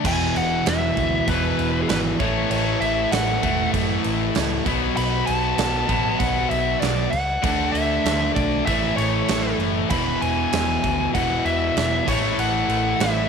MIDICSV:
0, 0, Header, 1, 6, 480
1, 0, Start_track
1, 0, Tempo, 616650
1, 40, Time_signature, 4, 2, 24, 8
1, 10343, End_track
2, 0, Start_track
2, 0, Title_t, "Lead electric guitar"
2, 0, Program_c, 0, 29
2, 53, Note_on_c, 0, 80, 99
2, 287, Note_off_c, 0, 80, 0
2, 290, Note_on_c, 0, 78, 102
2, 530, Note_on_c, 0, 76, 85
2, 531, Note_off_c, 0, 78, 0
2, 1005, Note_on_c, 0, 71, 97
2, 1016, Note_off_c, 0, 76, 0
2, 1416, Note_off_c, 0, 71, 0
2, 1419, Note_on_c, 0, 68, 65
2, 1474, Note_off_c, 0, 68, 0
2, 1477, Note_on_c, 0, 71, 80
2, 1541, Note_off_c, 0, 71, 0
2, 1711, Note_on_c, 0, 73, 98
2, 1944, Note_off_c, 0, 73, 0
2, 1953, Note_on_c, 0, 73, 91
2, 2181, Note_off_c, 0, 73, 0
2, 2184, Note_on_c, 0, 76, 94
2, 2410, Note_off_c, 0, 76, 0
2, 2427, Note_on_c, 0, 78, 73
2, 2876, Note_off_c, 0, 78, 0
2, 3867, Note_on_c, 0, 83, 96
2, 4090, Note_off_c, 0, 83, 0
2, 4097, Note_on_c, 0, 81, 101
2, 4816, Note_on_c, 0, 78, 100
2, 4843, Note_off_c, 0, 81, 0
2, 5054, Note_off_c, 0, 78, 0
2, 5057, Note_on_c, 0, 76, 100
2, 5284, Note_off_c, 0, 76, 0
2, 5289, Note_on_c, 0, 74, 83
2, 5530, Note_on_c, 0, 78, 104
2, 5545, Note_off_c, 0, 74, 0
2, 5987, Note_off_c, 0, 78, 0
2, 6010, Note_on_c, 0, 76, 96
2, 6468, Note_off_c, 0, 76, 0
2, 6498, Note_on_c, 0, 74, 76
2, 6726, Note_off_c, 0, 74, 0
2, 6738, Note_on_c, 0, 76, 87
2, 6979, Note_off_c, 0, 76, 0
2, 6982, Note_on_c, 0, 73, 82
2, 7435, Note_off_c, 0, 73, 0
2, 7709, Note_on_c, 0, 83, 98
2, 7933, Note_off_c, 0, 83, 0
2, 7951, Note_on_c, 0, 80, 114
2, 8642, Note_off_c, 0, 80, 0
2, 8674, Note_on_c, 0, 78, 98
2, 8915, Note_on_c, 0, 76, 104
2, 8922, Note_off_c, 0, 78, 0
2, 9406, Note_off_c, 0, 76, 0
2, 9409, Note_on_c, 0, 73, 88
2, 9648, Note_on_c, 0, 78, 88
2, 9651, Note_off_c, 0, 73, 0
2, 10124, Note_on_c, 0, 76, 86
2, 10140, Note_off_c, 0, 78, 0
2, 10343, Note_off_c, 0, 76, 0
2, 10343, End_track
3, 0, Start_track
3, 0, Title_t, "Distorted electric guitar"
3, 0, Program_c, 1, 30
3, 29, Note_on_c, 1, 40, 97
3, 40, Note_on_c, 1, 47, 106
3, 49, Note_on_c, 1, 52, 106
3, 737, Note_off_c, 1, 40, 0
3, 740, Note_off_c, 1, 52, 0
3, 743, Note_off_c, 1, 47, 0
3, 744, Note_on_c, 1, 52, 81
3, 758, Note_on_c, 1, 47, 77
3, 764, Note_on_c, 1, 40, 76
3, 1692, Note_off_c, 1, 52, 0
3, 1700, Note_off_c, 1, 47, 0
3, 1703, Note_off_c, 1, 40, 0
3, 1706, Note_on_c, 1, 45, 97
3, 1715, Note_on_c, 1, 52, 96
3, 1726, Note_on_c, 1, 57, 104
3, 2410, Note_off_c, 1, 45, 0
3, 2417, Note_off_c, 1, 52, 0
3, 2419, Note_on_c, 1, 45, 80
3, 2423, Note_off_c, 1, 57, 0
3, 2432, Note_on_c, 1, 52, 88
3, 2443, Note_on_c, 1, 57, 86
3, 3607, Note_off_c, 1, 45, 0
3, 3614, Note_off_c, 1, 52, 0
3, 3619, Note_off_c, 1, 57, 0
3, 3619, Note_on_c, 1, 47, 99
3, 3626, Note_on_c, 1, 54, 91
3, 3634, Note_on_c, 1, 59, 103
3, 4328, Note_off_c, 1, 47, 0
3, 4335, Note_off_c, 1, 59, 0
3, 4337, Note_on_c, 1, 47, 88
3, 4346, Note_off_c, 1, 54, 0
3, 4350, Note_on_c, 1, 54, 80
3, 4356, Note_on_c, 1, 59, 82
3, 5527, Note_off_c, 1, 47, 0
3, 5533, Note_off_c, 1, 54, 0
3, 5536, Note_off_c, 1, 59, 0
3, 5777, Note_on_c, 1, 50, 91
3, 5791, Note_on_c, 1, 57, 106
3, 5800, Note_on_c, 1, 62, 114
3, 6488, Note_off_c, 1, 50, 0
3, 6491, Note_off_c, 1, 62, 0
3, 6495, Note_off_c, 1, 57, 0
3, 6500, Note_on_c, 1, 62, 86
3, 6510, Note_on_c, 1, 57, 79
3, 6519, Note_on_c, 1, 50, 75
3, 6730, Note_off_c, 1, 62, 0
3, 6734, Note_off_c, 1, 57, 0
3, 6739, Note_off_c, 1, 50, 0
3, 6748, Note_on_c, 1, 45, 85
3, 6761, Note_on_c, 1, 52, 90
3, 6767, Note_on_c, 1, 57, 98
3, 7455, Note_off_c, 1, 45, 0
3, 7461, Note_off_c, 1, 57, 0
3, 7471, Note_on_c, 1, 57, 87
3, 7477, Note_off_c, 1, 52, 0
3, 7480, Note_on_c, 1, 52, 70
3, 7490, Note_on_c, 1, 45, 77
3, 7696, Note_off_c, 1, 57, 0
3, 7702, Note_on_c, 1, 40, 96
3, 7706, Note_off_c, 1, 45, 0
3, 7714, Note_on_c, 1, 47, 102
3, 7720, Note_off_c, 1, 52, 0
3, 7723, Note_on_c, 1, 52, 104
3, 8414, Note_off_c, 1, 40, 0
3, 8419, Note_off_c, 1, 52, 0
3, 8420, Note_off_c, 1, 47, 0
3, 8422, Note_on_c, 1, 52, 91
3, 8431, Note_on_c, 1, 47, 73
3, 8443, Note_on_c, 1, 40, 67
3, 9377, Note_off_c, 1, 52, 0
3, 9381, Note_off_c, 1, 47, 0
3, 9387, Note_off_c, 1, 40, 0
3, 9392, Note_on_c, 1, 45, 89
3, 9399, Note_on_c, 1, 52, 107
3, 9408, Note_on_c, 1, 57, 105
3, 10103, Note_off_c, 1, 45, 0
3, 10107, Note_off_c, 1, 52, 0
3, 10112, Note_off_c, 1, 57, 0
3, 10117, Note_on_c, 1, 45, 86
3, 10128, Note_on_c, 1, 52, 78
3, 10138, Note_on_c, 1, 57, 78
3, 10343, Note_off_c, 1, 45, 0
3, 10343, Note_off_c, 1, 52, 0
3, 10343, Note_off_c, 1, 57, 0
3, 10343, End_track
4, 0, Start_track
4, 0, Title_t, "Distorted electric guitar"
4, 0, Program_c, 2, 30
4, 992, Note_on_c, 2, 40, 85
4, 1005, Note_on_c, 2, 47, 76
4, 1014, Note_on_c, 2, 52, 84
4, 1697, Note_off_c, 2, 40, 0
4, 1700, Note_off_c, 2, 47, 0
4, 1708, Note_off_c, 2, 52, 0
4, 2664, Note_on_c, 2, 57, 87
4, 2678, Note_on_c, 2, 52, 89
4, 2688, Note_on_c, 2, 45, 73
4, 3610, Note_off_c, 2, 57, 0
4, 3617, Note_off_c, 2, 52, 0
4, 3619, Note_off_c, 2, 45, 0
4, 4578, Note_on_c, 2, 59, 98
4, 4591, Note_on_c, 2, 54, 79
4, 4602, Note_on_c, 2, 47, 81
4, 5527, Note_off_c, 2, 59, 0
4, 5534, Note_off_c, 2, 54, 0
4, 5539, Note_off_c, 2, 47, 0
4, 8668, Note_on_c, 2, 40, 81
4, 8679, Note_on_c, 2, 47, 81
4, 8692, Note_on_c, 2, 52, 83
4, 9379, Note_off_c, 2, 40, 0
4, 9385, Note_off_c, 2, 47, 0
4, 9391, Note_off_c, 2, 52, 0
4, 10343, End_track
5, 0, Start_track
5, 0, Title_t, "Picked electric bass"
5, 0, Program_c, 3, 34
5, 37, Note_on_c, 3, 28, 91
5, 220, Note_off_c, 3, 28, 0
5, 277, Note_on_c, 3, 28, 96
5, 460, Note_off_c, 3, 28, 0
5, 517, Note_on_c, 3, 28, 84
5, 699, Note_off_c, 3, 28, 0
5, 753, Note_on_c, 3, 38, 86
5, 937, Note_off_c, 3, 38, 0
5, 993, Note_on_c, 3, 28, 84
5, 1176, Note_off_c, 3, 28, 0
5, 1237, Note_on_c, 3, 28, 93
5, 1419, Note_off_c, 3, 28, 0
5, 1475, Note_on_c, 3, 32, 99
5, 1657, Note_off_c, 3, 32, 0
5, 1716, Note_on_c, 3, 33, 92
5, 1897, Note_off_c, 3, 33, 0
5, 1947, Note_on_c, 3, 33, 84
5, 2131, Note_off_c, 3, 33, 0
5, 2183, Note_on_c, 3, 33, 92
5, 2369, Note_off_c, 3, 33, 0
5, 2428, Note_on_c, 3, 33, 78
5, 2611, Note_off_c, 3, 33, 0
5, 2669, Note_on_c, 3, 28, 80
5, 2852, Note_off_c, 3, 28, 0
5, 2910, Note_on_c, 3, 42, 100
5, 3092, Note_off_c, 3, 42, 0
5, 3156, Note_on_c, 3, 33, 81
5, 3336, Note_off_c, 3, 33, 0
5, 3394, Note_on_c, 3, 37, 94
5, 3574, Note_off_c, 3, 37, 0
5, 3626, Note_on_c, 3, 35, 100
5, 3809, Note_off_c, 3, 35, 0
5, 3870, Note_on_c, 3, 35, 91
5, 4051, Note_off_c, 3, 35, 0
5, 4114, Note_on_c, 3, 35, 97
5, 4293, Note_off_c, 3, 35, 0
5, 4344, Note_on_c, 3, 35, 83
5, 4527, Note_off_c, 3, 35, 0
5, 4585, Note_on_c, 3, 33, 83
5, 4768, Note_off_c, 3, 33, 0
5, 4829, Note_on_c, 3, 35, 94
5, 5010, Note_off_c, 3, 35, 0
5, 5064, Note_on_c, 3, 35, 94
5, 5247, Note_off_c, 3, 35, 0
5, 5307, Note_on_c, 3, 35, 99
5, 5489, Note_off_c, 3, 35, 0
5, 5547, Note_on_c, 3, 37, 96
5, 5730, Note_off_c, 3, 37, 0
5, 5790, Note_on_c, 3, 38, 89
5, 5972, Note_off_c, 3, 38, 0
5, 6024, Note_on_c, 3, 38, 92
5, 6208, Note_off_c, 3, 38, 0
5, 6264, Note_on_c, 3, 38, 85
5, 6448, Note_off_c, 3, 38, 0
5, 6511, Note_on_c, 3, 35, 87
5, 6693, Note_off_c, 3, 35, 0
5, 6753, Note_on_c, 3, 33, 92
5, 6934, Note_off_c, 3, 33, 0
5, 6983, Note_on_c, 3, 33, 90
5, 7168, Note_off_c, 3, 33, 0
5, 7228, Note_on_c, 3, 33, 95
5, 7411, Note_off_c, 3, 33, 0
5, 7464, Note_on_c, 3, 30, 92
5, 7649, Note_off_c, 3, 30, 0
5, 7712, Note_on_c, 3, 28, 95
5, 7895, Note_off_c, 3, 28, 0
5, 7953, Note_on_c, 3, 28, 88
5, 8135, Note_off_c, 3, 28, 0
5, 8198, Note_on_c, 3, 28, 83
5, 8379, Note_off_c, 3, 28, 0
5, 8434, Note_on_c, 3, 38, 87
5, 8617, Note_off_c, 3, 38, 0
5, 8676, Note_on_c, 3, 28, 88
5, 8859, Note_off_c, 3, 28, 0
5, 8915, Note_on_c, 3, 28, 88
5, 9098, Note_off_c, 3, 28, 0
5, 9156, Note_on_c, 3, 28, 95
5, 9339, Note_off_c, 3, 28, 0
5, 9400, Note_on_c, 3, 33, 95
5, 9582, Note_off_c, 3, 33, 0
5, 9636, Note_on_c, 3, 33, 89
5, 9821, Note_off_c, 3, 33, 0
5, 9874, Note_on_c, 3, 33, 84
5, 10060, Note_off_c, 3, 33, 0
5, 10120, Note_on_c, 3, 33, 81
5, 10304, Note_off_c, 3, 33, 0
5, 10343, End_track
6, 0, Start_track
6, 0, Title_t, "Drums"
6, 36, Note_on_c, 9, 49, 108
6, 36, Note_on_c, 9, 57, 74
6, 38, Note_on_c, 9, 36, 101
6, 114, Note_off_c, 9, 49, 0
6, 114, Note_off_c, 9, 57, 0
6, 116, Note_off_c, 9, 36, 0
6, 279, Note_on_c, 9, 57, 62
6, 357, Note_off_c, 9, 57, 0
6, 514, Note_on_c, 9, 57, 82
6, 522, Note_on_c, 9, 38, 122
6, 592, Note_off_c, 9, 57, 0
6, 600, Note_off_c, 9, 38, 0
6, 754, Note_on_c, 9, 57, 54
6, 756, Note_on_c, 9, 36, 89
6, 832, Note_off_c, 9, 57, 0
6, 834, Note_off_c, 9, 36, 0
6, 994, Note_on_c, 9, 57, 83
6, 995, Note_on_c, 9, 36, 96
6, 1072, Note_off_c, 9, 57, 0
6, 1073, Note_off_c, 9, 36, 0
6, 1236, Note_on_c, 9, 57, 61
6, 1314, Note_off_c, 9, 57, 0
6, 1471, Note_on_c, 9, 57, 76
6, 1479, Note_on_c, 9, 38, 113
6, 1549, Note_off_c, 9, 57, 0
6, 1557, Note_off_c, 9, 38, 0
6, 1711, Note_on_c, 9, 57, 53
6, 1712, Note_on_c, 9, 36, 97
6, 1789, Note_off_c, 9, 57, 0
6, 1790, Note_off_c, 9, 36, 0
6, 1951, Note_on_c, 9, 57, 88
6, 2029, Note_off_c, 9, 57, 0
6, 2191, Note_on_c, 9, 57, 65
6, 2269, Note_off_c, 9, 57, 0
6, 2431, Note_on_c, 9, 57, 84
6, 2438, Note_on_c, 9, 38, 123
6, 2508, Note_off_c, 9, 57, 0
6, 2516, Note_off_c, 9, 38, 0
6, 2672, Note_on_c, 9, 36, 93
6, 2674, Note_on_c, 9, 57, 61
6, 2749, Note_off_c, 9, 36, 0
6, 2752, Note_off_c, 9, 57, 0
6, 2910, Note_on_c, 9, 36, 94
6, 2910, Note_on_c, 9, 57, 85
6, 2988, Note_off_c, 9, 36, 0
6, 2988, Note_off_c, 9, 57, 0
6, 3147, Note_on_c, 9, 57, 68
6, 3225, Note_off_c, 9, 57, 0
6, 3385, Note_on_c, 9, 57, 83
6, 3393, Note_on_c, 9, 38, 103
6, 3463, Note_off_c, 9, 57, 0
6, 3471, Note_off_c, 9, 38, 0
6, 3628, Note_on_c, 9, 36, 95
6, 3630, Note_on_c, 9, 57, 59
6, 3706, Note_off_c, 9, 36, 0
6, 3708, Note_off_c, 9, 57, 0
6, 3867, Note_on_c, 9, 57, 83
6, 3945, Note_off_c, 9, 57, 0
6, 4103, Note_on_c, 9, 57, 64
6, 4181, Note_off_c, 9, 57, 0
6, 4344, Note_on_c, 9, 57, 85
6, 4352, Note_on_c, 9, 38, 117
6, 4422, Note_off_c, 9, 57, 0
6, 4430, Note_off_c, 9, 38, 0
6, 4585, Note_on_c, 9, 36, 86
6, 4585, Note_on_c, 9, 57, 60
6, 4663, Note_off_c, 9, 36, 0
6, 4663, Note_off_c, 9, 57, 0
6, 4826, Note_on_c, 9, 36, 86
6, 4826, Note_on_c, 9, 57, 79
6, 4904, Note_off_c, 9, 36, 0
6, 4904, Note_off_c, 9, 57, 0
6, 5068, Note_on_c, 9, 57, 59
6, 5146, Note_off_c, 9, 57, 0
6, 5309, Note_on_c, 9, 57, 76
6, 5317, Note_on_c, 9, 38, 97
6, 5387, Note_off_c, 9, 57, 0
6, 5395, Note_off_c, 9, 38, 0
6, 5547, Note_on_c, 9, 57, 60
6, 5625, Note_off_c, 9, 57, 0
6, 5789, Note_on_c, 9, 36, 108
6, 5789, Note_on_c, 9, 57, 80
6, 5867, Note_off_c, 9, 36, 0
6, 5867, Note_off_c, 9, 57, 0
6, 6032, Note_on_c, 9, 57, 66
6, 6110, Note_off_c, 9, 57, 0
6, 6270, Note_on_c, 9, 57, 81
6, 6278, Note_on_c, 9, 38, 109
6, 6348, Note_off_c, 9, 57, 0
6, 6355, Note_off_c, 9, 38, 0
6, 6510, Note_on_c, 9, 36, 95
6, 6514, Note_on_c, 9, 57, 64
6, 6588, Note_off_c, 9, 36, 0
6, 6591, Note_off_c, 9, 57, 0
6, 6751, Note_on_c, 9, 57, 84
6, 6752, Note_on_c, 9, 36, 96
6, 6829, Note_off_c, 9, 36, 0
6, 6829, Note_off_c, 9, 57, 0
6, 6991, Note_on_c, 9, 57, 69
6, 7069, Note_off_c, 9, 57, 0
6, 7227, Note_on_c, 9, 57, 87
6, 7234, Note_on_c, 9, 38, 107
6, 7305, Note_off_c, 9, 57, 0
6, 7312, Note_off_c, 9, 38, 0
6, 7470, Note_on_c, 9, 57, 56
6, 7548, Note_off_c, 9, 57, 0
6, 7707, Note_on_c, 9, 57, 84
6, 7712, Note_on_c, 9, 36, 105
6, 7785, Note_off_c, 9, 57, 0
6, 7790, Note_off_c, 9, 36, 0
6, 7956, Note_on_c, 9, 57, 59
6, 8034, Note_off_c, 9, 57, 0
6, 8193, Note_on_c, 9, 57, 86
6, 8201, Note_on_c, 9, 38, 112
6, 8271, Note_off_c, 9, 57, 0
6, 8279, Note_off_c, 9, 38, 0
6, 8437, Note_on_c, 9, 36, 85
6, 8437, Note_on_c, 9, 57, 57
6, 8514, Note_off_c, 9, 36, 0
6, 8515, Note_off_c, 9, 57, 0
6, 8678, Note_on_c, 9, 36, 81
6, 8680, Note_on_c, 9, 57, 79
6, 8756, Note_off_c, 9, 36, 0
6, 8758, Note_off_c, 9, 57, 0
6, 8918, Note_on_c, 9, 57, 53
6, 8995, Note_off_c, 9, 57, 0
6, 9160, Note_on_c, 9, 57, 74
6, 9167, Note_on_c, 9, 38, 98
6, 9237, Note_off_c, 9, 57, 0
6, 9245, Note_off_c, 9, 38, 0
6, 9401, Note_on_c, 9, 36, 93
6, 9405, Note_on_c, 9, 57, 92
6, 9479, Note_off_c, 9, 36, 0
6, 9483, Note_off_c, 9, 57, 0
6, 9642, Note_on_c, 9, 57, 76
6, 9720, Note_off_c, 9, 57, 0
6, 9882, Note_on_c, 9, 57, 63
6, 9960, Note_off_c, 9, 57, 0
6, 10121, Note_on_c, 9, 57, 88
6, 10129, Note_on_c, 9, 38, 127
6, 10199, Note_off_c, 9, 57, 0
6, 10206, Note_off_c, 9, 38, 0
6, 10343, End_track
0, 0, End_of_file